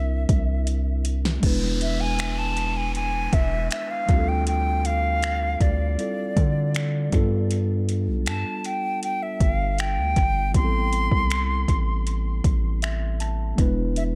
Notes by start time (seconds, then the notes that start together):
Already playing: C2 G3 C4 D4 E4 A#4 E5
0.29 C2, kick, closed hi-hat
0.67 closed hi-hat
1.05 closed hi-hat
1.25 snare
1.40 E1 G#3 B3 D4, kick, closed hi-hat, crash, downlifter
1.45 E4 B4
1.81 E5, closed hi-hat
2.01 G#5
2.19 finger snap, closed hi-hat
2.39 A5
2.57 closed hi-hat
2.77 G#5
2.95 G#5, closed hi-hat
3.33 E1 E5, kick, closed hi-hat
3.71 E5, finger snap, closed hi-hat
3.91 F5
4.06 D2 G3 C4 D4, kick, closed hi-hat
4.11 F4 G4
4.18 A4
4.29 G5
4.47 G5, closed hi-hat
4.85 F5, closed hi-hat
5.23 finger snap, closed hi-hat
5.61 D2 D5, kick, closed hi-hat
5.98 G3 C4 E4 F4 A4, closed hi-hat
6.37 D3, kick, closed hi-hat
6.75 finger snap, closed hi-hat
7.10 G2 G3 B3 D4, kick, closed hi-hat
7.14 F4 A4
7.51 closed hi-hat
7.89 closed hi-hat
8.08 B1
8.26 G2 A5, finger snap, closed hi-hat
8.64 G5, closed hi-hat
9.03 G5, closed hi-hat
9.23 E5
9.40 G1 F5, kick, closed hi-hat
9.78 G5, finger snap, closed hi-hat
9.98 D2
10.16 G1, kick, closed hi-hat
10.52 A1 G3 B3 C4 C6, kick, closed hi-hat
10.56 E4 G4
10.64 A4
10.93 closed hi-hat
11.12 C2, kick
11.30 finger snap, closed hi-hat
11.68 A1, kick, closed hi-hat
12.07 closed hi-hat
12.44 A1, kick, closed hi-hat
12.82 E5, finger snap, closed hi-hat
13.20 A5, closed hi-hat
13.56 E1 G#3 B3 D4, kick, closed hi-hat
13.60 E4 B4
13.96 E5, closed hi-hat